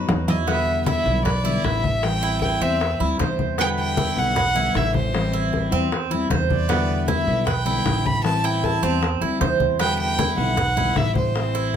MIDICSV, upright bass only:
0, 0, Header, 1, 2, 480
1, 0, Start_track
1, 0, Key_signature, 1, "minor"
1, 0, Tempo, 388350
1, 587, Time_signature, 4, 2, 24, 8
1, 14539, End_track
2, 0, Start_track
2, 0, Title_t, "Upright bass"
2, 0, Program_c, 0, 32
2, 105, Note_on_c, 0, 40, 88
2, 1233, Note_off_c, 0, 40, 0
2, 1305, Note_on_c, 0, 35, 93
2, 1977, Note_off_c, 0, 35, 0
2, 2026, Note_on_c, 0, 33, 80
2, 3154, Note_off_c, 0, 33, 0
2, 3226, Note_on_c, 0, 40, 91
2, 3674, Note_off_c, 0, 40, 0
2, 3708, Note_on_c, 0, 38, 72
2, 3932, Note_off_c, 0, 38, 0
2, 3951, Note_on_c, 0, 40, 83
2, 5077, Note_off_c, 0, 40, 0
2, 5146, Note_on_c, 0, 35, 86
2, 5819, Note_off_c, 0, 35, 0
2, 5869, Note_on_c, 0, 33, 92
2, 6997, Note_off_c, 0, 33, 0
2, 7067, Note_on_c, 0, 40, 94
2, 7740, Note_off_c, 0, 40, 0
2, 7787, Note_on_c, 0, 40, 90
2, 8915, Note_off_c, 0, 40, 0
2, 8987, Note_on_c, 0, 35, 87
2, 9659, Note_off_c, 0, 35, 0
2, 9709, Note_on_c, 0, 33, 89
2, 10836, Note_off_c, 0, 33, 0
2, 10909, Note_on_c, 0, 40, 90
2, 11356, Note_off_c, 0, 40, 0
2, 11386, Note_on_c, 0, 38, 71
2, 11611, Note_off_c, 0, 38, 0
2, 11627, Note_on_c, 0, 40, 91
2, 12754, Note_off_c, 0, 40, 0
2, 12824, Note_on_c, 0, 35, 91
2, 13496, Note_off_c, 0, 35, 0
2, 13544, Note_on_c, 0, 33, 85
2, 14539, Note_off_c, 0, 33, 0
2, 14539, End_track
0, 0, End_of_file